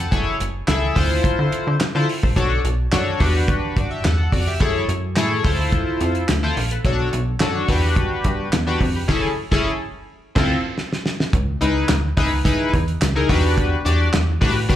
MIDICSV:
0, 0, Header, 1, 4, 480
1, 0, Start_track
1, 0, Tempo, 560748
1, 102, Time_signature, 4, 2, 24, 8
1, 12632, End_track
2, 0, Start_track
2, 0, Title_t, "Analog polysynth"
2, 0, Program_c, 0, 90
2, 0, Note_on_c, 0, 69, 62
2, 0, Note_on_c, 0, 78, 68
2, 91, Note_off_c, 0, 69, 0
2, 96, Note_on_c, 0, 64, 90
2, 96, Note_on_c, 0, 68, 82
2, 101, Note_on_c, 0, 69, 80
2, 102, Note_on_c, 0, 73, 99
2, 216, Note_off_c, 0, 78, 0
2, 300, Note_off_c, 0, 64, 0
2, 300, Note_off_c, 0, 68, 0
2, 303, Note_off_c, 0, 69, 0
2, 303, Note_off_c, 0, 73, 0
2, 575, Note_on_c, 0, 64, 86
2, 578, Note_on_c, 0, 68, 80
2, 579, Note_on_c, 0, 69, 80
2, 583, Note_on_c, 0, 76, 90
2, 805, Note_off_c, 0, 64, 0
2, 807, Note_off_c, 0, 69, 0
2, 815, Note_on_c, 0, 64, 92
2, 817, Note_on_c, 0, 65, 77
2, 817, Note_on_c, 0, 69, 77
2, 820, Note_off_c, 0, 68, 0
2, 821, Note_on_c, 0, 72, 104
2, 823, Note_off_c, 0, 76, 0
2, 1493, Note_off_c, 0, 64, 0
2, 1494, Note_off_c, 0, 65, 0
2, 1495, Note_off_c, 0, 69, 0
2, 1496, Note_off_c, 0, 72, 0
2, 1668, Note_on_c, 0, 64, 86
2, 1669, Note_on_c, 0, 65, 88
2, 1673, Note_on_c, 0, 69, 78
2, 1674, Note_on_c, 0, 72, 98
2, 1762, Note_off_c, 0, 64, 0
2, 1763, Note_off_c, 0, 65, 0
2, 1764, Note_off_c, 0, 69, 0
2, 1765, Note_off_c, 0, 72, 0
2, 1905, Note_on_c, 0, 69, 100
2, 1911, Note_on_c, 0, 72, 109
2, 1954, Note_off_c, 0, 69, 0
2, 1957, Note_off_c, 0, 72, 0
2, 2020, Note_on_c, 0, 62, 91
2, 2022, Note_on_c, 0, 66, 82
2, 2025, Note_on_c, 0, 69, 84
2, 2027, Note_on_c, 0, 73, 99
2, 2222, Note_off_c, 0, 62, 0
2, 2223, Note_off_c, 0, 66, 0
2, 2225, Note_off_c, 0, 69, 0
2, 2226, Note_off_c, 0, 73, 0
2, 2496, Note_on_c, 0, 62, 86
2, 2499, Note_on_c, 0, 66, 76
2, 2501, Note_on_c, 0, 69, 78
2, 2505, Note_on_c, 0, 73, 90
2, 2727, Note_off_c, 0, 62, 0
2, 2729, Note_off_c, 0, 66, 0
2, 2738, Note_on_c, 0, 62, 97
2, 2739, Note_on_c, 0, 66, 84
2, 2740, Note_on_c, 0, 67, 83
2, 2742, Note_off_c, 0, 69, 0
2, 2744, Note_off_c, 0, 73, 0
2, 2745, Note_on_c, 0, 71, 98
2, 3215, Note_off_c, 0, 66, 0
2, 3221, Note_off_c, 0, 67, 0
2, 3222, Note_on_c, 0, 74, 60
2, 3224, Note_off_c, 0, 71, 0
2, 3226, Note_on_c, 0, 66, 53
2, 3343, Note_off_c, 0, 74, 0
2, 3345, Note_off_c, 0, 66, 0
2, 3345, Note_on_c, 0, 76, 69
2, 3352, Note_on_c, 0, 67, 59
2, 3415, Note_off_c, 0, 62, 0
2, 3454, Note_off_c, 0, 76, 0
2, 3458, Note_off_c, 0, 67, 0
2, 3460, Note_on_c, 0, 78, 74
2, 3466, Note_on_c, 0, 69, 61
2, 3689, Note_off_c, 0, 78, 0
2, 3692, Note_off_c, 0, 69, 0
2, 3700, Note_on_c, 0, 74, 72
2, 3706, Note_on_c, 0, 66, 58
2, 3822, Note_off_c, 0, 74, 0
2, 3825, Note_off_c, 0, 66, 0
2, 3827, Note_on_c, 0, 76, 66
2, 3831, Note_on_c, 0, 67, 58
2, 3937, Note_on_c, 0, 64, 90
2, 3941, Note_on_c, 0, 68, 86
2, 3941, Note_on_c, 0, 69, 86
2, 3943, Note_on_c, 0, 73, 99
2, 4056, Note_off_c, 0, 76, 0
2, 4058, Note_off_c, 0, 67, 0
2, 4141, Note_off_c, 0, 64, 0
2, 4143, Note_off_c, 0, 68, 0
2, 4143, Note_off_c, 0, 69, 0
2, 4144, Note_off_c, 0, 73, 0
2, 4419, Note_on_c, 0, 64, 80
2, 4421, Note_on_c, 0, 68, 78
2, 4424, Note_on_c, 0, 69, 81
2, 4425, Note_on_c, 0, 73, 94
2, 4644, Note_off_c, 0, 64, 0
2, 4652, Note_off_c, 0, 69, 0
2, 4655, Note_on_c, 0, 64, 95
2, 4657, Note_on_c, 0, 65, 83
2, 4662, Note_off_c, 0, 68, 0
2, 4662, Note_on_c, 0, 69, 78
2, 4662, Note_on_c, 0, 72, 96
2, 4664, Note_off_c, 0, 73, 0
2, 5333, Note_off_c, 0, 64, 0
2, 5335, Note_off_c, 0, 65, 0
2, 5337, Note_off_c, 0, 69, 0
2, 5337, Note_off_c, 0, 72, 0
2, 5503, Note_on_c, 0, 64, 91
2, 5506, Note_on_c, 0, 65, 88
2, 5508, Note_on_c, 0, 69, 80
2, 5512, Note_on_c, 0, 72, 98
2, 5600, Note_off_c, 0, 64, 0
2, 5601, Note_off_c, 0, 65, 0
2, 5602, Note_off_c, 0, 69, 0
2, 5604, Note_off_c, 0, 72, 0
2, 5743, Note_on_c, 0, 69, 99
2, 5751, Note_on_c, 0, 71, 103
2, 5793, Note_off_c, 0, 69, 0
2, 5797, Note_off_c, 0, 71, 0
2, 5861, Note_on_c, 0, 62, 90
2, 5863, Note_on_c, 0, 66, 85
2, 5866, Note_on_c, 0, 69, 81
2, 5867, Note_on_c, 0, 73, 96
2, 6063, Note_off_c, 0, 62, 0
2, 6064, Note_off_c, 0, 66, 0
2, 6065, Note_off_c, 0, 69, 0
2, 6066, Note_off_c, 0, 73, 0
2, 6342, Note_on_c, 0, 62, 83
2, 6343, Note_on_c, 0, 66, 75
2, 6345, Note_on_c, 0, 69, 73
2, 6346, Note_on_c, 0, 73, 93
2, 6566, Note_off_c, 0, 62, 0
2, 6569, Note_off_c, 0, 66, 0
2, 6576, Note_on_c, 0, 62, 89
2, 6579, Note_on_c, 0, 66, 83
2, 6583, Note_on_c, 0, 67, 85
2, 6583, Note_on_c, 0, 71, 101
2, 6584, Note_off_c, 0, 69, 0
2, 6584, Note_off_c, 0, 73, 0
2, 7254, Note_off_c, 0, 62, 0
2, 7256, Note_off_c, 0, 66, 0
2, 7257, Note_off_c, 0, 67, 0
2, 7257, Note_off_c, 0, 71, 0
2, 7418, Note_on_c, 0, 62, 90
2, 7423, Note_on_c, 0, 66, 85
2, 7424, Note_on_c, 0, 67, 88
2, 7425, Note_on_c, 0, 71, 100
2, 7517, Note_off_c, 0, 62, 0
2, 7519, Note_off_c, 0, 66, 0
2, 7520, Note_off_c, 0, 67, 0
2, 7521, Note_off_c, 0, 71, 0
2, 7663, Note_on_c, 0, 67, 103
2, 7671, Note_on_c, 0, 71, 108
2, 7713, Note_off_c, 0, 67, 0
2, 7717, Note_off_c, 0, 71, 0
2, 7772, Note_on_c, 0, 61, 103
2, 7775, Note_on_c, 0, 64, 108
2, 7778, Note_on_c, 0, 68, 107
2, 7779, Note_on_c, 0, 69, 100
2, 7942, Note_off_c, 0, 61, 0
2, 7944, Note_off_c, 0, 64, 0
2, 7945, Note_off_c, 0, 68, 0
2, 7946, Note_off_c, 0, 69, 0
2, 8143, Note_on_c, 0, 61, 113
2, 8143, Note_on_c, 0, 64, 105
2, 8146, Note_on_c, 0, 68, 118
2, 8149, Note_on_c, 0, 69, 113
2, 8306, Note_off_c, 0, 61, 0
2, 8307, Note_off_c, 0, 64, 0
2, 8308, Note_off_c, 0, 68, 0
2, 8310, Note_off_c, 0, 69, 0
2, 8860, Note_on_c, 0, 60, 105
2, 8862, Note_on_c, 0, 64, 104
2, 8865, Note_on_c, 0, 65, 102
2, 8867, Note_on_c, 0, 69, 101
2, 9025, Note_off_c, 0, 60, 0
2, 9026, Note_off_c, 0, 64, 0
2, 9027, Note_off_c, 0, 65, 0
2, 9029, Note_off_c, 0, 69, 0
2, 9935, Note_on_c, 0, 63, 95
2, 9938, Note_on_c, 0, 64, 77
2, 9941, Note_on_c, 0, 68, 81
2, 9943, Note_on_c, 0, 71, 92
2, 10140, Note_off_c, 0, 63, 0
2, 10141, Note_off_c, 0, 64, 0
2, 10143, Note_off_c, 0, 68, 0
2, 10144, Note_off_c, 0, 71, 0
2, 10416, Note_on_c, 0, 63, 96
2, 10418, Note_on_c, 0, 64, 86
2, 10421, Note_on_c, 0, 68, 89
2, 10423, Note_on_c, 0, 71, 115
2, 10524, Note_off_c, 0, 63, 0
2, 10525, Note_off_c, 0, 64, 0
2, 10527, Note_off_c, 0, 68, 0
2, 10528, Note_off_c, 0, 71, 0
2, 10654, Note_on_c, 0, 63, 87
2, 10655, Note_on_c, 0, 64, 82
2, 10657, Note_on_c, 0, 68, 85
2, 10660, Note_on_c, 0, 71, 100
2, 10907, Note_off_c, 0, 63, 0
2, 10908, Note_off_c, 0, 64, 0
2, 10909, Note_off_c, 0, 68, 0
2, 10910, Note_off_c, 0, 71, 0
2, 11262, Note_on_c, 0, 63, 84
2, 11262, Note_on_c, 0, 64, 77
2, 11264, Note_on_c, 0, 68, 77
2, 11266, Note_on_c, 0, 70, 93
2, 11376, Note_on_c, 0, 62, 93
2, 11378, Note_off_c, 0, 63, 0
2, 11379, Note_off_c, 0, 64, 0
2, 11379, Note_off_c, 0, 68, 0
2, 11380, Note_on_c, 0, 66, 86
2, 11381, Note_off_c, 0, 70, 0
2, 11382, Note_on_c, 0, 67, 84
2, 11383, Note_on_c, 0, 71, 107
2, 11769, Note_off_c, 0, 62, 0
2, 11771, Note_off_c, 0, 66, 0
2, 11772, Note_off_c, 0, 67, 0
2, 11772, Note_off_c, 0, 71, 0
2, 11854, Note_on_c, 0, 62, 87
2, 11858, Note_on_c, 0, 66, 82
2, 11859, Note_on_c, 0, 67, 80
2, 11861, Note_on_c, 0, 74, 100
2, 12059, Note_off_c, 0, 62, 0
2, 12061, Note_off_c, 0, 66, 0
2, 12062, Note_off_c, 0, 67, 0
2, 12063, Note_off_c, 0, 74, 0
2, 12333, Note_on_c, 0, 62, 100
2, 12335, Note_on_c, 0, 66, 90
2, 12337, Note_on_c, 0, 67, 86
2, 12340, Note_on_c, 0, 71, 106
2, 12443, Note_off_c, 0, 62, 0
2, 12444, Note_off_c, 0, 66, 0
2, 12445, Note_off_c, 0, 67, 0
2, 12446, Note_off_c, 0, 71, 0
2, 12571, Note_on_c, 0, 62, 91
2, 12575, Note_on_c, 0, 66, 80
2, 12575, Note_on_c, 0, 67, 83
2, 12579, Note_on_c, 0, 71, 101
2, 12632, Note_off_c, 0, 62, 0
2, 12632, Note_off_c, 0, 66, 0
2, 12632, Note_off_c, 0, 67, 0
2, 12632, Note_off_c, 0, 71, 0
2, 12632, End_track
3, 0, Start_track
3, 0, Title_t, "Analog synth bass"
3, 0, Program_c, 1, 38
3, 104, Note_on_c, 1, 30, 120
3, 298, Note_off_c, 1, 30, 0
3, 345, Note_on_c, 1, 30, 96
3, 539, Note_off_c, 1, 30, 0
3, 582, Note_on_c, 1, 37, 83
3, 777, Note_off_c, 1, 37, 0
3, 823, Note_on_c, 1, 38, 108
3, 1018, Note_off_c, 1, 38, 0
3, 1188, Note_on_c, 1, 50, 89
3, 1281, Note_off_c, 1, 50, 0
3, 1430, Note_on_c, 1, 50, 95
3, 1522, Note_off_c, 1, 50, 0
3, 1670, Note_on_c, 1, 50, 106
3, 1761, Note_off_c, 1, 50, 0
3, 1912, Note_on_c, 1, 34, 89
3, 2003, Note_off_c, 1, 34, 0
3, 2023, Note_on_c, 1, 35, 108
3, 2218, Note_off_c, 1, 35, 0
3, 2266, Note_on_c, 1, 35, 98
3, 2460, Note_off_c, 1, 35, 0
3, 2504, Note_on_c, 1, 42, 91
3, 2698, Note_off_c, 1, 42, 0
3, 2744, Note_on_c, 1, 40, 95
3, 3042, Note_off_c, 1, 40, 0
3, 3224, Note_on_c, 1, 43, 89
3, 3418, Note_off_c, 1, 43, 0
3, 3464, Note_on_c, 1, 40, 97
3, 3658, Note_off_c, 1, 40, 0
3, 3702, Note_on_c, 1, 41, 92
3, 3897, Note_off_c, 1, 41, 0
3, 3942, Note_on_c, 1, 42, 112
3, 4137, Note_off_c, 1, 42, 0
3, 4182, Note_on_c, 1, 42, 98
3, 4421, Note_on_c, 1, 45, 90
3, 4434, Note_off_c, 1, 42, 0
3, 4617, Note_off_c, 1, 45, 0
3, 4662, Note_on_c, 1, 38, 87
3, 4961, Note_off_c, 1, 38, 0
3, 5143, Note_on_c, 1, 41, 87
3, 5338, Note_off_c, 1, 41, 0
3, 5382, Note_on_c, 1, 38, 99
3, 5578, Note_off_c, 1, 38, 0
3, 5622, Note_on_c, 1, 34, 87
3, 5818, Note_off_c, 1, 34, 0
3, 5860, Note_on_c, 1, 35, 111
3, 6056, Note_off_c, 1, 35, 0
3, 6103, Note_on_c, 1, 35, 99
3, 6298, Note_off_c, 1, 35, 0
3, 6345, Note_on_c, 1, 42, 86
3, 6539, Note_off_c, 1, 42, 0
3, 6579, Note_on_c, 1, 40, 94
3, 6879, Note_off_c, 1, 40, 0
3, 7061, Note_on_c, 1, 43, 83
3, 7257, Note_off_c, 1, 43, 0
3, 7302, Note_on_c, 1, 40, 99
3, 7497, Note_off_c, 1, 40, 0
3, 7539, Note_on_c, 1, 41, 95
3, 7735, Note_off_c, 1, 41, 0
3, 7779, Note_on_c, 1, 30, 97
3, 7946, Note_off_c, 1, 30, 0
3, 8147, Note_on_c, 1, 30, 109
3, 8309, Note_off_c, 1, 30, 0
3, 8869, Note_on_c, 1, 38, 103
3, 9030, Note_off_c, 1, 38, 0
3, 9700, Note_on_c, 1, 37, 110
3, 9896, Note_off_c, 1, 37, 0
3, 9943, Note_on_c, 1, 37, 94
3, 10138, Note_off_c, 1, 37, 0
3, 10184, Note_on_c, 1, 38, 83
3, 10378, Note_off_c, 1, 38, 0
3, 10420, Note_on_c, 1, 37, 86
3, 10720, Note_off_c, 1, 37, 0
3, 10903, Note_on_c, 1, 40, 81
3, 11098, Note_off_c, 1, 40, 0
3, 11146, Note_on_c, 1, 37, 100
3, 11340, Note_off_c, 1, 37, 0
3, 11380, Note_on_c, 1, 40, 102
3, 11771, Note_off_c, 1, 40, 0
3, 11864, Note_on_c, 1, 40, 111
3, 12058, Note_off_c, 1, 40, 0
3, 12105, Note_on_c, 1, 40, 85
3, 12299, Note_off_c, 1, 40, 0
3, 12341, Note_on_c, 1, 45, 95
3, 12632, Note_off_c, 1, 45, 0
3, 12632, End_track
4, 0, Start_track
4, 0, Title_t, "Drums"
4, 103, Note_on_c, 9, 36, 106
4, 103, Note_on_c, 9, 42, 77
4, 189, Note_off_c, 9, 36, 0
4, 189, Note_off_c, 9, 42, 0
4, 346, Note_on_c, 9, 42, 80
4, 432, Note_off_c, 9, 42, 0
4, 579, Note_on_c, 9, 39, 85
4, 584, Note_on_c, 9, 38, 111
4, 584, Note_on_c, 9, 42, 84
4, 665, Note_off_c, 9, 39, 0
4, 670, Note_off_c, 9, 38, 0
4, 670, Note_off_c, 9, 42, 0
4, 823, Note_on_c, 9, 36, 96
4, 823, Note_on_c, 9, 46, 84
4, 908, Note_off_c, 9, 46, 0
4, 909, Note_off_c, 9, 36, 0
4, 1062, Note_on_c, 9, 36, 117
4, 1066, Note_on_c, 9, 42, 101
4, 1147, Note_off_c, 9, 36, 0
4, 1152, Note_off_c, 9, 42, 0
4, 1304, Note_on_c, 9, 42, 76
4, 1390, Note_off_c, 9, 42, 0
4, 1544, Note_on_c, 9, 39, 87
4, 1544, Note_on_c, 9, 42, 85
4, 1548, Note_on_c, 9, 38, 115
4, 1629, Note_off_c, 9, 39, 0
4, 1629, Note_off_c, 9, 42, 0
4, 1634, Note_off_c, 9, 38, 0
4, 1791, Note_on_c, 9, 46, 81
4, 1876, Note_off_c, 9, 46, 0
4, 1912, Note_on_c, 9, 36, 88
4, 1998, Note_off_c, 9, 36, 0
4, 2023, Note_on_c, 9, 36, 107
4, 2025, Note_on_c, 9, 42, 74
4, 2109, Note_off_c, 9, 36, 0
4, 2111, Note_off_c, 9, 42, 0
4, 2266, Note_on_c, 9, 42, 78
4, 2352, Note_off_c, 9, 42, 0
4, 2500, Note_on_c, 9, 39, 86
4, 2505, Note_on_c, 9, 38, 102
4, 2505, Note_on_c, 9, 42, 79
4, 2586, Note_off_c, 9, 39, 0
4, 2591, Note_off_c, 9, 38, 0
4, 2591, Note_off_c, 9, 42, 0
4, 2742, Note_on_c, 9, 46, 86
4, 2743, Note_on_c, 9, 36, 101
4, 2828, Note_off_c, 9, 36, 0
4, 2828, Note_off_c, 9, 46, 0
4, 2981, Note_on_c, 9, 36, 120
4, 2986, Note_on_c, 9, 42, 102
4, 3067, Note_off_c, 9, 36, 0
4, 3072, Note_off_c, 9, 42, 0
4, 3224, Note_on_c, 9, 36, 89
4, 3224, Note_on_c, 9, 42, 77
4, 3310, Note_off_c, 9, 36, 0
4, 3310, Note_off_c, 9, 42, 0
4, 3463, Note_on_c, 9, 39, 90
4, 3463, Note_on_c, 9, 42, 89
4, 3467, Note_on_c, 9, 38, 118
4, 3548, Note_off_c, 9, 39, 0
4, 3548, Note_off_c, 9, 42, 0
4, 3553, Note_off_c, 9, 38, 0
4, 3701, Note_on_c, 9, 36, 85
4, 3707, Note_on_c, 9, 46, 85
4, 3787, Note_off_c, 9, 36, 0
4, 3793, Note_off_c, 9, 46, 0
4, 3942, Note_on_c, 9, 36, 105
4, 3943, Note_on_c, 9, 42, 78
4, 4028, Note_off_c, 9, 36, 0
4, 4029, Note_off_c, 9, 42, 0
4, 4185, Note_on_c, 9, 42, 84
4, 4270, Note_off_c, 9, 42, 0
4, 4417, Note_on_c, 9, 39, 83
4, 4422, Note_on_c, 9, 38, 104
4, 4422, Note_on_c, 9, 42, 84
4, 4503, Note_off_c, 9, 39, 0
4, 4507, Note_off_c, 9, 38, 0
4, 4508, Note_off_c, 9, 42, 0
4, 4660, Note_on_c, 9, 46, 85
4, 4661, Note_on_c, 9, 36, 104
4, 4746, Note_off_c, 9, 46, 0
4, 4747, Note_off_c, 9, 36, 0
4, 4900, Note_on_c, 9, 36, 120
4, 4903, Note_on_c, 9, 42, 89
4, 4986, Note_off_c, 9, 36, 0
4, 4988, Note_off_c, 9, 42, 0
4, 5140, Note_on_c, 9, 42, 78
4, 5226, Note_off_c, 9, 42, 0
4, 5263, Note_on_c, 9, 42, 43
4, 5349, Note_off_c, 9, 42, 0
4, 5379, Note_on_c, 9, 39, 92
4, 5379, Note_on_c, 9, 42, 91
4, 5383, Note_on_c, 9, 38, 107
4, 5464, Note_off_c, 9, 39, 0
4, 5465, Note_off_c, 9, 42, 0
4, 5469, Note_off_c, 9, 38, 0
4, 5623, Note_on_c, 9, 46, 80
4, 5709, Note_off_c, 9, 46, 0
4, 5744, Note_on_c, 9, 42, 62
4, 5830, Note_off_c, 9, 42, 0
4, 5860, Note_on_c, 9, 36, 99
4, 5860, Note_on_c, 9, 42, 83
4, 5946, Note_off_c, 9, 36, 0
4, 5946, Note_off_c, 9, 42, 0
4, 6102, Note_on_c, 9, 42, 76
4, 6188, Note_off_c, 9, 42, 0
4, 6334, Note_on_c, 9, 39, 93
4, 6338, Note_on_c, 9, 38, 110
4, 6339, Note_on_c, 9, 42, 83
4, 6419, Note_off_c, 9, 39, 0
4, 6424, Note_off_c, 9, 38, 0
4, 6424, Note_off_c, 9, 42, 0
4, 6577, Note_on_c, 9, 46, 86
4, 6579, Note_on_c, 9, 36, 98
4, 6663, Note_off_c, 9, 46, 0
4, 6664, Note_off_c, 9, 36, 0
4, 6817, Note_on_c, 9, 36, 123
4, 6820, Note_on_c, 9, 42, 95
4, 6903, Note_off_c, 9, 36, 0
4, 6905, Note_off_c, 9, 42, 0
4, 7057, Note_on_c, 9, 42, 83
4, 7060, Note_on_c, 9, 36, 81
4, 7142, Note_off_c, 9, 42, 0
4, 7146, Note_off_c, 9, 36, 0
4, 7298, Note_on_c, 9, 39, 95
4, 7298, Note_on_c, 9, 42, 96
4, 7302, Note_on_c, 9, 38, 115
4, 7383, Note_off_c, 9, 39, 0
4, 7383, Note_off_c, 9, 42, 0
4, 7388, Note_off_c, 9, 38, 0
4, 7538, Note_on_c, 9, 36, 96
4, 7542, Note_on_c, 9, 46, 75
4, 7623, Note_off_c, 9, 36, 0
4, 7628, Note_off_c, 9, 46, 0
4, 7778, Note_on_c, 9, 49, 74
4, 7780, Note_on_c, 9, 36, 104
4, 7780, Note_on_c, 9, 38, 99
4, 7863, Note_off_c, 9, 49, 0
4, 7865, Note_off_c, 9, 36, 0
4, 7866, Note_off_c, 9, 38, 0
4, 8147, Note_on_c, 9, 36, 99
4, 8150, Note_on_c, 9, 38, 97
4, 8233, Note_off_c, 9, 36, 0
4, 8235, Note_off_c, 9, 38, 0
4, 8868, Note_on_c, 9, 36, 106
4, 8868, Note_on_c, 9, 49, 89
4, 8870, Note_on_c, 9, 38, 109
4, 8953, Note_off_c, 9, 49, 0
4, 8954, Note_off_c, 9, 36, 0
4, 8956, Note_off_c, 9, 38, 0
4, 9224, Note_on_c, 9, 38, 57
4, 9310, Note_off_c, 9, 38, 0
4, 9352, Note_on_c, 9, 38, 68
4, 9438, Note_off_c, 9, 38, 0
4, 9464, Note_on_c, 9, 38, 88
4, 9549, Note_off_c, 9, 38, 0
4, 9590, Note_on_c, 9, 38, 96
4, 9676, Note_off_c, 9, 38, 0
4, 9700, Note_on_c, 9, 36, 114
4, 9701, Note_on_c, 9, 42, 75
4, 9786, Note_off_c, 9, 36, 0
4, 9787, Note_off_c, 9, 42, 0
4, 9942, Note_on_c, 9, 42, 79
4, 10028, Note_off_c, 9, 42, 0
4, 10174, Note_on_c, 9, 39, 95
4, 10179, Note_on_c, 9, 38, 113
4, 10179, Note_on_c, 9, 42, 88
4, 10260, Note_off_c, 9, 39, 0
4, 10265, Note_off_c, 9, 38, 0
4, 10265, Note_off_c, 9, 42, 0
4, 10418, Note_on_c, 9, 46, 88
4, 10420, Note_on_c, 9, 36, 104
4, 10503, Note_off_c, 9, 46, 0
4, 10506, Note_off_c, 9, 36, 0
4, 10659, Note_on_c, 9, 36, 121
4, 10661, Note_on_c, 9, 42, 100
4, 10744, Note_off_c, 9, 36, 0
4, 10747, Note_off_c, 9, 42, 0
4, 10901, Note_on_c, 9, 42, 80
4, 10902, Note_on_c, 9, 36, 84
4, 10987, Note_off_c, 9, 36, 0
4, 10987, Note_off_c, 9, 42, 0
4, 11024, Note_on_c, 9, 42, 43
4, 11109, Note_off_c, 9, 42, 0
4, 11140, Note_on_c, 9, 39, 88
4, 11140, Note_on_c, 9, 42, 101
4, 11145, Note_on_c, 9, 38, 107
4, 11226, Note_off_c, 9, 39, 0
4, 11226, Note_off_c, 9, 42, 0
4, 11231, Note_off_c, 9, 38, 0
4, 11380, Note_on_c, 9, 36, 94
4, 11386, Note_on_c, 9, 46, 81
4, 11466, Note_off_c, 9, 36, 0
4, 11472, Note_off_c, 9, 46, 0
4, 11622, Note_on_c, 9, 36, 105
4, 11625, Note_on_c, 9, 42, 81
4, 11707, Note_off_c, 9, 36, 0
4, 11710, Note_off_c, 9, 42, 0
4, 11864, Note_on_c, 9, 42, 84
4, 11950, Note_off_c, 9, 42, 0
4, 12097, Note_on_c, 9, 39, 86
4, 12102, Note_on_c, 9, 38, 115
4, 12102, Note_on_c, 9, 42, 85
4, 12183, Note_off_c, 9, 39, 0
4, 12188, Note_off_c, 9, 38, 0
4, 12188, Note_off_c, 9, 42, 0
4, 12341, Note_on_c, 9, 36, 100
4, 12342, Note_on_c, 9, 46, 89
4, 12427, Note_off_c, 9, 36, 0
4, 12427, Note_off_c, 9, 46, 0
4, 12580, Note_on_c, 9, 36, 120
4, 12584, Note_on_c, 9, 42, 101
4, 12632, Note_off_c, 9, 36, 0
4, 12632, Note_off_c, 9, 42, 0
4, 12632, End_track
0, 0, End_of_file